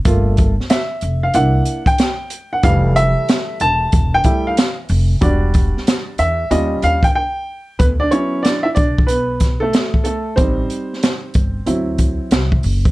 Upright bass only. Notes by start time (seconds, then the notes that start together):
0.05 G1
1.02 F1
1.34 C2
2.64 F1
3.61 E1
3.93 E1
4.90 F1
5.22 E1
6.19 E2
6.51 D#2
6.83 D#2
7.80 D2
8.77 B1
10.38 A1
11.35 G1
11.67 D2
12.31 C2
12.64 F#1